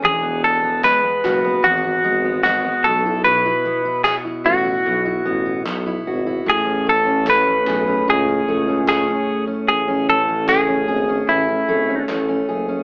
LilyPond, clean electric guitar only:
\new Staff \with { instrumentName = "Clean electric guitar" } { \time 4/4 \key a \lydian \tempo 4 = 75 gis'8 a'8 b'4 fis'4 fis'8 a'8 | b'4 gis'8 fis'4. r4 | gis'8 a'8 b'4 gis'4 gis'8. r16 | gis'8 a'8 gis'4 e'4 r4 | }